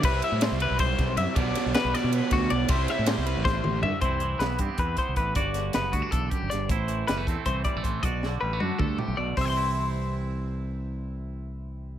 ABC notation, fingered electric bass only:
X:1
M:7/8
L:1/16
Q:1/4=157
K:Clyd
V:1 name="Fingered electric bass" clef=bass
C,,2 z A,,2 C,,2 B,,,3 B,,,2 F,, z | B,,,2 z B,,, z B,,, z B,,2 z D,,2 B,,,2 | C,,2 z A,,2 C,,2 A,,,3 A,,,2 G,, z | C,,4 B,,,2 G,, z E,,2 z C,, A,,,2 |
G,,,4 F,,,2 D,, z B,,,2 z G,,, G,,,2 | A,,,4 F,,,2 E,, z C,,2 z A,,, A,,,2 | B,,,4 A,,,2 F,, z D,,2 z B,,, B,,,2 | C,,12- C,,2- |
C,,12- C,,2 |]